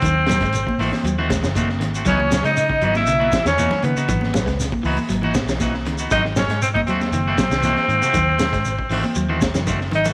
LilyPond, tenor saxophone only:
\new Staff \with { instrumentName = "Tenor saxophone" } { \time 4/4 \key cis \minor \tempo 4 = 118 bis2~ bis8 r4. | cis'8. dis'4 e'4 cis'8. b8~ | b4 r2. | dis'8 cis'8 bis16 dis'16 bis2~ bis8~ |
bis2. r8 dis'8 | }